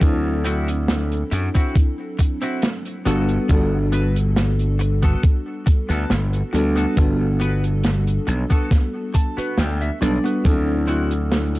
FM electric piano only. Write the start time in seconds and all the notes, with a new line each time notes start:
Already playing: D4 E4 A4
0.00 F#3 C4 D4 E4 A4
3.05 G3 B3 D4 F#4 A4
3.48 G3 B3 D4 F#4 A4
6.53 G3 B3 D4 F#4 A4
6.96 G3 B3 D4 F#4 A4
10.01 G3 B3 D4 A4
10.44 F#3 C4 D4 E4 A4